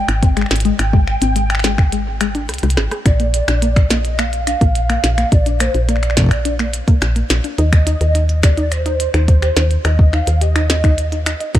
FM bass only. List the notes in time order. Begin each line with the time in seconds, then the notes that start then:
0.08 G#1
0.51 G#1
0.79 G#1
1.22 G#1
2.49 C2
2.63 C2
2.77 G#1
3.06 A#1
3.48 A#1
4.61 A#1
5.04 A#1
5.32 A#1
5.74 A#1
7.02 A#1
7.30 A#1
7.58 D#2
8.01 D#2
9.14 D#2
9.57 D#2
9.85 D#2
10.27 D#2
11.55 D#2